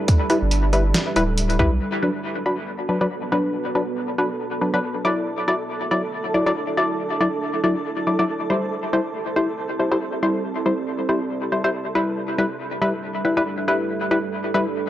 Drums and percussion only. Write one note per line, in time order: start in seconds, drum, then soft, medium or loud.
0.08 kick loud
0.08 closed hi-hat medium
0.30 closed hi-hat medium
0.51 closed hi-hat medium
0.73 closed hi-hat medium
0.94 snare loud
0.94 closed hi-hat medium
1.16 closed hi-hat medium
1.38 closed hi-hat medium
1.50 closed hi-hat soft
1.59 kick medium